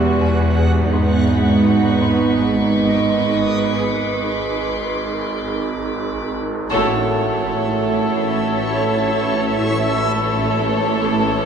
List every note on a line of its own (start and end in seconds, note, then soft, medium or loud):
0.00 0.89 E1 soft
0.00 0.89 E2 medium
0.00 0.89 G3 soft
0.00 0.89 B3 medium
0.00 0.88 F#4 medium
0.00 0.89 F#4 soft
0.00 0.89 F#5 medium
0.00 0.53 B5 soft
0.00 0.53 C6 soft
0.21 0.43 E2 medium
0.57 0.79 E2 soft
0.93 3.81 G#1 medium
0.93 3.78 G#1 soft
0.93 3.78 G#2 soft
0.93 1.15 G#2 medium
0.93 3.78 B3 soft
0.93 3.82 D#4 soft
0.93 3.82 G#4 soft
0.93 3.78 B4 soft
0.93 3.82 D#5 soft
0.93 6.32 B5 soft
0.93 4.44 C#6 soft
1.29 1.51 G#3 soft
1.66 1.87 G#2 soft
2.02 2.23 G#2 soft
2.37 2.59 G#3 soft
2.37 6.32 D6 soft
2.74 2.95 G#2 soft
2.74 3.78 D#5 soft
3.10 3.32 G#2 soft
3.46 3.68 G#2 soft
3.82 6.67 G#1 medium
4.44 5.59 C6 soft
6.70 9.56 A1 soft
6.70 9.57 A1 medium
6.70 9.56 A2 soft
6.70 6.93 A2 soft
6.70 9.57 A3 soft
6.70 9.56 E4 medium
6.70 9.57 E4 soft
6.70 8.84 F#4 soft
6.70 9.57 A4 soft
6.70 9.56 C#5 soft
6.70 9.57 C#5 medium
6.70 9.57 E5 medium
6.70 8.84 F#5 soft
7.79 8.01 A3 soft
8.16 8.38 A2 soft
8.52 8.74 A3 soft
8.89 9.10 A3 soft
9.25 9.47 A2 soft
9.60 11.45 A1 soft
9.60 11.45 A1 medium
9.60 11.45 A2 soft
9.60 9.83 A2 soft
9.60 11.45 A3 soft
9.60 11.45 E4 soft
9.60 11.45 E4 medium
9.60 11.45 A4 soft
9.60 11.45 C#5 soft
9.60 11.45 E5 soft
9.97 10.19 A2 soft
10.33 10.55 A2 soft
10.69 10.91 A3 soft
11.05 11.27 A2 soft
11.42 11.45 A3 soft